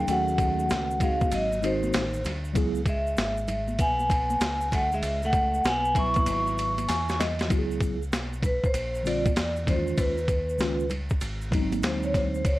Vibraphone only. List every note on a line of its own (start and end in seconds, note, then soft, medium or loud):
0.00 0.10 G5 medium
0.11 1.05 F#5 medium
1.03 1.34 F5 medium
1.34 1.65 D#5 medium
1.65 2.22 C5 medium
2.89 3.83 E5 medium
3.81 4.76 G#5 medium
4.74 4.92 F#5 medium
4.95 5.25 E5 medium
5.26 5.67 F#5 medium
5.68 5.95 G#5 medium
5.99 7.17 C#6 medium
8.46 8.65 B4 medium
8.66 9.07 C5 loud
9.07 9.70 D5 medium
9.69 10.00 C5 medium
10.00 10.87 B4 medium
11.84 12.02 C5 medium
12.04 12.14 C#5 medium
12.15 12.35 C5 medium
12.36 12.46 C5 medium
12.46 12.59 C#5 medium